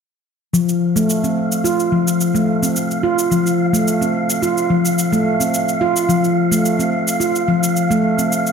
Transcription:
0.53 handpan F3, synth texture F5, shaker
0.69 shaker
0.96 handpan A3, shaker
1.10 shaker
1.24 handpan C4, shaker
1.52 shaker
1.64 handpan F4, shaker
1.80 shaker
1.92 handpan F3
2.08 shaker
2.21 shaker
2.35 handpan A3, shaker
2.63 handpan C4, shaker
2.76 shaker
2.91 shaker
3.03 handpan F4
3.19 shaker
3.31 handpan F3, shaker
3.47 shaker
3.73 handpan A3, shaker
3.88 shaker
4.01 handpan C4, shaker
4.30 shaker
4.42 handpan F4, shaker
4.58 shaker
4.70 handpan F3
4.85 shaker
4.99 shaker
5.12 handpan A3, shaker
5.40 handpan C4, shaker
5.54 shaker
5.69 shaker
5.81 handpan F4
5.96 shaker
6.09 handpan F3, shaker
6.24 shaker
6.51 handpan A3, shaker
6.66 shaker
6.79 handpan C4, shaker
7.08 shaker
7.20 handpan F4, shaker
7.36 shaker
7.48 handpan F3
7.63 shaker
7.77 shaker
7.91 handpan A3, shaker
8.18 handpan C4, shaker
8.32 shaker
8.47 shaker

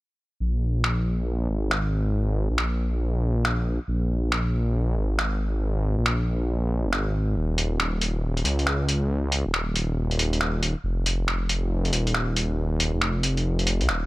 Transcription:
0.41 detuned saw bass A#1
0.84 finger snap
1.49 detuned saw bass G#1
1.71 finger snap
2.50 detuned saw bass A#1
2.58 finger snap
3.45 finger snap
3.88 detuned saw bass A#1
4.32 finger snap
4.97 detuned saw bass G#1
5.19 finger snap
5.98 detuned saw bass A#1
6.06 finger snap
6.85 detuned saw bass F1
6.93 detuned saw bass G#1, finger snap
7.36 detuned saw bass D#1
7.58 closed hi-hat
7.80 finger snap
8.01 closed hi-hat
8.37 closed hi-hat
8.45 detuned saw bass C#2, closed hi-hat
8.59 closed hi-hat
8.67 finger snap
8.89 closed hi-hat
9.32 closed hi-hat
9.46 detuned saw bass D#1
9.54 finger snap
9.76 closed hi-hat
10.11 closed hi-hat
10.19 closed hi-hat
10.33 closed hi-hat
10.41 finger snap
10.63 closed hi-hat
10.84 detuned saw bass F1
11.06 closed hi-hat
11.28 finger snap
11.49 closed hi-hat
11.85 closed hi-hat
11.93 detuned saw bass D#1, closed hi-hat
12.07 closed hi-hat
12.14 finger snap
12.36 closed hi-hat
12.80 closed hi-hat
12.94 detuned saw bass F1
13.01 finger snap
13.23 closed hi-hat
13.37 closed hi-hat
13.59 closed hi-hat
13.67 closed hi-hat
13.81 detuned saw bass C2, closed hi-hat
13.89 detuned saw bass D#1, finger snap

